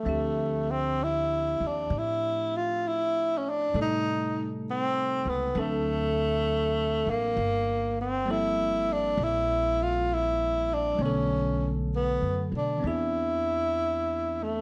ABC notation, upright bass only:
X:1
M:4/4
L:1/8
Q:"Swing" 1/4=66
K:Dm
V:1 name="Upright bass" clef=bass
D,,3 _E,, A,,4 | A,,3 ^C,, D,,3 A,,, | G,,,4 B,,,4 | =B,,,2- (3B,,, ^F,, =B,, E,,4 |]